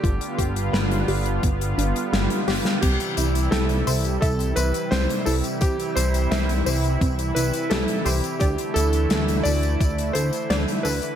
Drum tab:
CC |----------------|x---------------|----------------|----------------|
HH |xxxxxxoxxxxxxxox|xxxxxxoxxxxxxxox|xxxxxxoxxxxxxxox|xxxxxxoxxxxxxxox|
TB |----------------|xxxxxxxxxxxxxxxx|xxxxxxxxxxxxxxxx|xxxxxxxxxxxxxxxx|
SD |----o-------o-oo|----o-------o---|----o-------o---|----o-------o---|
BD |o-o-----o-------|o-------o-------|o-------o-------|o-------o-------|